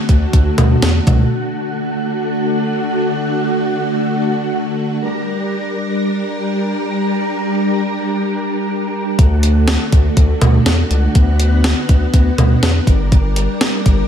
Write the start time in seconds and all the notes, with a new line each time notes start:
Already playing: D3 A3 F#4
0.09 D2, kick, closed hi-hat
0.33 D2, kick, closed hi-hat
0.58 D2, closed hi-hat, mid tom, cowbell
0.82 E2, snare, closed hi-hat
1.07 C#2, kick, closed hi-hat, mid tom
1.32 D3 A3 F#4
5.01 G3 D4 A#4
9.19 D2 D3 A3 F#4, kick, closed hi-hat
9.43 closed hi-hat
9.68 snare, closed hi-hat
9.92 D2, kick, closed hi-hat
10.17 D2, kick, closed hi-hat
10.41 D2, closed hi-hat, mid tom, cowbell
10.66 E2, snare, closed hi-hat
10.91 C#2, closed hi-hat
11.15 D2 B3, kick, closed hi-hat
11.40 closed hi-hat
11.64 snare, closed hi-hat
11.89 D2, kick, closed hi-hat
12.14 D2, kick, closed hi-hat
12.38 D2, closed hi-hat, mid tom, cowbell
12.63 E2, snare, closed hi-hat
12.87 G1 G3 D4 A#4, kick, closed hi-hat
13.12 kick, closed hi-hat
13.36 closed hi-hat
13.61 snare, closed hi-hat
13.86 G1, kick, closed hi-hat